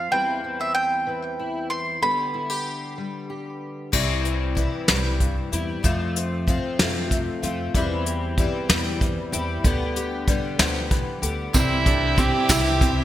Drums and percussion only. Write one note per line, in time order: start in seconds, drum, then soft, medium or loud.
3.93 kick soft
3.93 crash medium
4.25 closed hi-hat soft
4.57 kick soft
4.57 closed hi-hat soft
4.88 snare medium
4.88 closed hi-hat medium
5.20 kick soft
5.20 closed hi-hat soft
5.53 closed hi-hat medium
5.84 kick soft
5.84 closed hi-hat medium
6.16 closed hi-hat medium
6.48 kick medium
6.48 closed hi-hat medium
6.79 snare medium
6.79 closed hi-hat medium
7.11 kick medium
7.11 closed hi-hat medium
7.43 closed hi-hat medium
7.75 kick medium
7.75 closed hi-hat medium
8.06 closed hi-hat medium
8.38 kick medium
8.38 closed hi-hat medium
8.70 snare loud
8.70 closed hi-hat medium
9.01 kick medium
9.01 closed hi-hat medium
9.33 closed hi-hat medium
9.64 kick medium
9.64 closed hi-hat medium
9.96 closed hi-hat medium
10.28 kick medium
10.28 closed hi-hat medium
10.59 snare loud
10.59 closed hi-hat medium
10.91 kick medium
10.91 closed hi-hat medium
11.23 closed hi-hat medium
11.54 kick medium
11.54 closed hi-hat medium
11.54 tambourine medium
11.86 kick medium
11.86 closed hi-hat medium
12.18 kick medium
12.18 closed hi-hat medium
12.49 kick medium
12.49 snare loud
12.49 closed hi-hat medium
12.49 tambourine medium
12.65 tambourine soft
12.81 kick medium
12.81 closed hi-hat medium